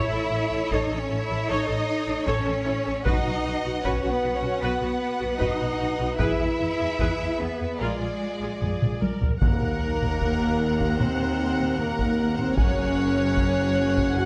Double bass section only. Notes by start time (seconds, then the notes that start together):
0.11 A1
0.30 A1
0.50 A1
0.70 A1
0.90 A1
1.10 A1
1.29 A1
1.48 A1
1.68 A1
2.07 A1
2.27 A1
2.46 A1
2.67 A1
2.87 A1
3.07 B1
3.26 B1
3.45 B1
3.64 B1
3.84 B1
4.04 B1
4.23 B1
4.42 B1
4.62 B1
4.81 B1
5.21 B1
5.41 B1
5.61 B1
5.80 B1
5.99 B1
6.20 E2
6.40 E2
6.59 E2
6.79 E2
7.00 E2
7.20 E2
7.39 E2
7.60 E2
7.80 A#1
8.00 A#1
8.41 A#1
8.61 A#1
8.82 A#1
9.02 A#1
9.22 A#1
9.42 D#2
12.57 F#1